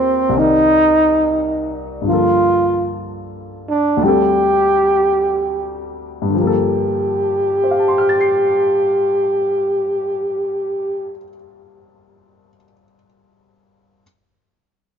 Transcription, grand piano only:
Already playing: D#2 A#2 F3 C4 G4 A#4 C5
0.29 C2 C3
0.35 D#3 D5
0.41 A#4
2.02 G2 D3
2.07 F3 A#3
2.13 A4
3.97 D2 D3
4.02 G3 C4
4.08 A4
6.22 G2
6.29 D3
6.35 F3
6.41 A#3
6.47 A4
7.64 C5
7.71 F5
7.79 A5
7.88 C6
7.98 F6
8.09 A6
8.21 C7

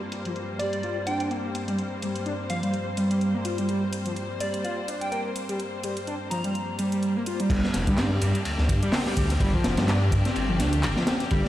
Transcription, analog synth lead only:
0.25 F3
0.60 G3
0.84 F4
1.07 D4
1.31 A#3
1.44 A#3
1.68 G3
2.03 G3
2.26 D4
2.50 F3
2.63 G3
2.97 G3
3.10 G3
3.34 A#3
3.45 F4
3.59 G3
3.69 G3
4.06 F3
4.41 G3
4.64 F4
4.88 D4
5.12 A#3
5.25 A#3
5.49 G3
5.84 G3
6.07 D4
6.31 F3
6.45 G3
6.79 G3
6.92 G3
7.17 A#3
7.27 F4
7.40 G3
7.51 G3
7.88 G3
7.98 C4
8.11 G3
8.22 G3
8.83 G3
8.93 C4
9.07 G3
9.17 G3
9.41 G3
9.54 F3
9.88 D4
10.25 C4
10.49 F3
10.60 D4
10.97 F3
11.07 C4
11.31 G3

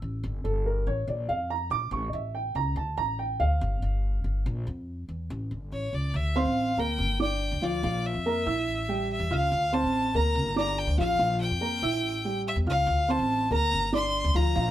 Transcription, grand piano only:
0.44 A4
0.66 A#4
0.87 C#5
1.08 D5
1.29 F5
1.50 A#5
1.71 D6
1.92 C#6
2.09 D#5
2.14 E5
2.35 G5
2.56 A#5
2.77 A5
2.98 A#5
3.19 G5
3.40 F5
6.36 C4 C5 C6
6.78 A#3 A#4 A#5
7.20 D4 D5 D6
7.62 F3 F4 F5
7.83 F3 F4 F5
8.26 A#3 A#4 A#5
8.46 E4 E5 E6
8.88 G3 G4 G5
9.31 F4 F5 F6
9.73 C4 C5 C6
10.15 A#3 A#4 A#5
10.56 D4 D5 D6
10.97 F3 F4 F5
11.19 F3 F4 F5
11.61 A#3 A#4 A#5
11.82 E4 E5 E6
12.25 G3 G4 G5
12.67 F4 F5 F6
13.08 C4 C5 C6
13.51 A#3 A#4 A#5
13.93 D4 D5 D6
14.35 F3 F4 F5
14.55 F3 F4 F5

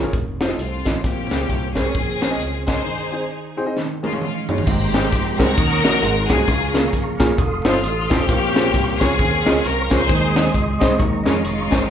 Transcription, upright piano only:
0.03 C#4 F4 G#4 A#4
0.40 D#4 F4 A4 C5
0.48 D#4 F4 A4 D#5
0.85 D#4 F4 A4 D#5
1.04 A#2
1.31 C#4 G#4 A#4 C5
1.75 C#4 G#4 A#4 C5
1.85 C#4 G#4 A#4 C#5
2.22 C#4 G#4 A#4 C5
2.31 C#4 G#4 A#4 D#5
2.67 C#4 G#4 A#4 D#5
2.85 D#3
3.12 C4 D#4 G#4 C5
3.57 C4 D#4 G#4 C5
3.66 C4 D#4 G#4 D#5
3.76 D#3
4.03 C#4 D#4 G#4 A#4
4.13 C#4 D#4 G#4 C#5
4.49 C#4 D#4 G#4 C#5
4.67 G#2
4.94 C4 D#4 G4 G#4 A#4
5.39 C4 D#4 G4 G#4 A#4
5.57 D#3
5.84 A#3 C#4 D#4 F#4 A#4
6.03 G#2
6.30 A#3 C4 D#4 F#4 G#4
6.47 C#3
6.74 A#3 C#4 F4 G#4 A#4
7.19 A#3 C#4 F4 G#4 A#4
7.65 C4 D#4 F4 A4 C5
8.09 C4 D#4 F4 A4 C5
8.28 A#2
8.55 C#4 F4 G#4 A#4 C5
9.01 C#4 F4 G#4 A#4 C#5
9.46 C#4 F4 G#4 A#4 D#5
9.90 C#4 F4 G#4 A#4 C5
10.09 D#3
10.36 C4 D#4 G#4 C5 D#5
10.80 C4 D#4 G#4 C5 D#5
10.98 D#3
11.25 C#4 D#4 G#4 A#4 C#5
11.71 C#4 D#4 G#4 A#4 C5

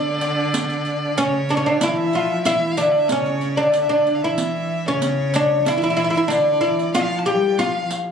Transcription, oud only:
Already playing: D4
1.18 C#4
1.50 D4
1.57 C#4
1.66 D4
1.83 E4
2.15 F4
2.46 E4
2.78 D4
3.12 C#4
3.57 D4
3.89 D4
4.24 E4
4.88 C#4
5.36 D4
5.68 E4
5.77 E4
5.84 E4
5.90 E4
5.97 E4
6.04 E4
6.10 E4
6.17 E4
6.28 D4
6.61 E4
6.95 F4
7.26 G4
7.59 F4

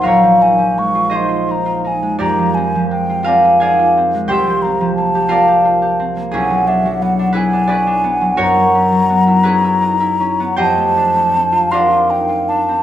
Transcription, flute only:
0.08 A#5
0.42 G#5
0.79 C#6
1.16 C6
1.51 A#5
1.87 G#5
2.21 A#5
2.55 G#5
2.91 G5
3.26 G#5
4.29 C6
4.62 A#5
4.95 A5
6.33 G#5
6.67 E5
7.02 F#5
7.37 G#5
8.41 A#5
10.61 A5
11.71 C6
12.10 G5
12.49 A5

